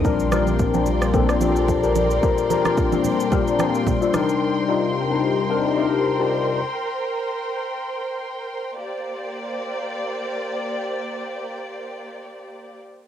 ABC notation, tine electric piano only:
X:1
M:4/4
L:1/16
Q:"Swing 16ths" 1/4=110
K:Bb
V:1 name="Tine electric piano"
[B,,G,CDB]2 [B,,G,CDB]2 z [B,,G,CDF]2 z [B,,G,CDA]2 [B,,G,CDc]2 z [B,,G,CDB]2 z | [B,,G,CDB]2 [B,,G,CDB]2 z [B,,G,CDB]2 z [B,,G,CDB]2 [B,,G,CDF]2 z [B,,G,CDA] [C,G,DEB]2- | [C,G,DEB] z [C,G,DEF]2 z [C,G,DEG]2 z [C,G,DEB]2 [C,G,DEB]2 z [C,G,DEF]2 z | z16 |
z16 | z16 |]